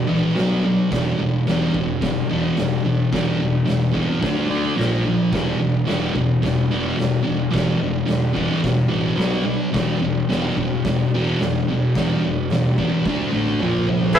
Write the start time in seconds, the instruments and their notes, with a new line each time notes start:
0.07 distorted electric guitar E2 B2 E3
0.11 fingered electric bass A#1
0.35 distorted electric guitar B2 F#3 B3, snare, open hi-hat
0.39 fingered electric bass B1
0.65 distorted electric guitar B2 F#3
0.91 fingered electric bass E1, distorted electric guitar E2 B2 E3, kick, snare, open hi-hat
1.20 fingered electric bass E1, distorted electric guitar E2 B2
1.47 fingered electric bass E1, distorted electric guitar E2 B2 E3, snare, open hi-hat
1.74 fingered electric bass E1, distorted electric guitar E2 B2, kick
2.01 fingered electric bass E1, distorted electric guitar E2 B2, kick, snare, open hi-hat
2.29 fingered electric bass E1, distorted electric guitar E2 B2 E3
2.57 fingered electric bass E1, distorted electric guitar E2 B2, snare, open hi-hat
2.84 fingered electric bass E1, distorted electric guitar E2 B2
3.12 fingered electric bass E1, distorted electric guitar E2 B2 E3, kick, snare, open hi-hat
3.40 fingered electric bass E1, distorted electric guitar E2 B2
3.66 fingered electric bass E1, distorted electric guitar E2 B2, snare, open hi-hat
3.93 distorted electric guitar E2 B2 E3, kick
4.20 fingered electric bass D2, distorted electric guitar D3 A3 D4, kick, snare, open hi-hat
4.49 fingered electric bass D2, distorted electric guitar D3 A3 D4
4.76 fingered electric bass A#1, distorted electric guitar A#2 F3 A#3, snare, open hi-hat
5.06 distorted electric guitar A#2 F3
5.32 fingered electric bass E1, distorted electric guitar E2 B2 E3, kick, snare, open hi-hat
5.60 fingered electric bass E1, distorted electric guitar E2 B2
5.86 fingered electric bass E1, distorted electric guitar E2 B2 E3, snare, open hi-hat
6.14 fingered electric bass E1, distorted electric guitar E2 B2, kick
6.42 fingered electric bass E1, distorted electric guitar E2 B2, kick, snare, open hi-hat
6.71 fingered electric bass E1, distorted electric guitar E2 B2 E3
6.97 fingered electric bass E1, distorted electric guitar E2 B2, snare, open hi-hat
7.23 distorted electric guitar E2 B2
7.28 fingered electric bass E1
7.51 fingered electric bass E1, distorted electric guitar E2 B2 E3, kick, open hi-hat
7.55 snare
7.79 fingered electric bass E1, distorted electric guitar E2 B2
8.06 fingered electric bass E1, distorted electric guitar E2 B2, snare, open hi-hat
8.34 distorted electric guitar E2 B2 E3, kick
8.62 fingered electric bass E1, distorted electric guitar E2 B2, kick, snare, open hi-hat
8.88 fingered electric bass A1, distorted electric guitar E2 B2 E3
9.16 fingered electric bass B1, distorted electric guitar B2 F#3 B3, snare, open hi-hat
9.45 distorted electric guitar B2 F#3
9.72 fingered electric bass E1, distorted electric guitar E2 B2 E3, kick, snare, open hi-hat
10.01 fingered electric bass E1, distorted electric guitar E2 B2
10.29 fingered electric bass E1, distorted electric guitar E2 B2 E3, snare, open hi-hat
10.57 fingered electric bass E1, distorted electric guitar E2 B2, kick
10.84 fingered electric bass E1, distorted electric guitar E2 B2, kick, snare, open hi-hat
11.14 fingered electric bass E1, distorted electric guitar E2 B2 E3
11.40 fingered electric bass E1, distorted electric guitar E2 B2, snare, open hi-hat
11.69 fingered electric bass E1, distorted electric guitar E2 B2
11.95 fingered electric bass E1, distorted electric guitar E2 B2 E3, kick, snare, open hi-hat
12.24 fingered electric bass E1, distorted electric guitar E2 B2
12.50 fingered electric bass D#2, distorted electric guitar E2 B2, snare, open hi-hat
12.78 distorted electric guitar E2 B2 E3, kick
13.05 fingered electric bass D2, distorted electric guitar D3 A3 D4, kick, snare
13.32 fingered electric bass A1, distorted electric guitar D3 A3 D4, high tom
13.59 fingered electric bass A#1, distorted electric guitar A#2 F3 A#3, mid tom
13.73 mid tom
13.86 distorted electric guitar A#2 F3, floor tom
14.00 floor tom
14.13 fingered electric bass E1, transistor combo organ G#4 B4 E5, kick, crash